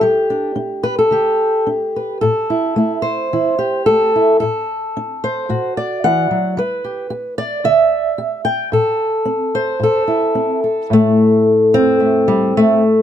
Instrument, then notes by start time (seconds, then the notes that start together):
steel-string acoustic guitar
0.01 G3 G4
0.30 D4
0.56 D4
0.83 B4
0.99 A4
1.11 D3 G4
1.67 D4
1.96 B4
2.21 A2 A4
2.50 E4
2.76 A3 E4
3.02 C5
3.33 E3 E4
3.59 G4
3.86 A3 A4
4.16 E4
4.40 A2 A4
4.97 D4
5.24 C5
5.49 A2 F#4
5.77 D5
6.04 E3 F#5
6.31 F#3
6.57 G3 B4
6.84 G4
7.10 G4
7.38 D5
7.64 D3 E5
8.18 G4
8.45 G5
8.72 A2 A4
9.25 C4
9.55 C5
9.80 A2 A4
10.08 E4
10.35 C4
10.64 A4
10.90 A2 A3
11.74 C4
12.00 A3
12.28 G3
12.57 A3